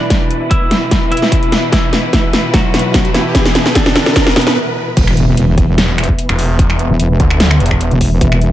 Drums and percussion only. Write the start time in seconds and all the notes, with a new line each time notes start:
0.10 kick, snare, closed hi-hat
0.31 closed hi-hat
0.51 kick, closed hi-hat
0.71 snare, closed hi-hat
0.91 kick, snare, closed hi-hat
1.12 closed hi-hat
1.17 closed hi-hat
1.22 snare
1.32 kick, closed hi-hat
1.43 closed hi-hat
1.52 snare, closed hi-hat
1.72 kick, snare, closed hi-hat
1.93 snare, closed hi-hat
2.13 kick, snare, closed hi-hat
2.33 snare, closed hi-hat
2.54 kick, snare, closed hi-hat
2.74 snare, closed hi-hat
2.79 closed hi-hat
2.94 kick, snare, closed hi-hat
3.05 closed hi-hat
3.14 snare, closed hi-hat
3.35 kick, snare, closed hi-hat
3.45 snare
3.55 snare, closed hi-hat
3.66 snare
3.75 kick, snare, closed hi-hat
3.86 snare
3.96 snare, closed hi-hat
4.06 snare
4.16 kick, snare, closed hi-hat
4.27 snare
4.36 snare, closed hi-hat
4.41 closed hi-hat
4.47 snare
4.97 kick, closed hi-hat, crash
5.07 finger snap
5.17 closed hi-hat
5.37 closed hi-hat
5.58 kick, closed hi-hat
5.78 snare, closed hi-hat
5.98 finger snap, closed hi-hat
6.04 closed hi-hat
6.09 kick
6.19 closed hi-hat
6.29 finger snap, closed hi-hat
6.39 open hi-hat
6.59 kick, closed hi-hat
6.70 finger snap
6.79 closed hi-hat
7.00 closed hi-hat
7.20 kick, closed hi-hat
7.30 finger snap
7.40 snare, closed hi-hat
7.51 finger snap
7.60 closed hi-hat
7.66 closed hi-hat
7.71 finger snap, kick
7.81 closed hi-hat
7.91 closed hi-hat
8.01 kick, open hi-hat
8.21 kick, closed hi-hat
8.32 finger snap
8.41 closed hi-hat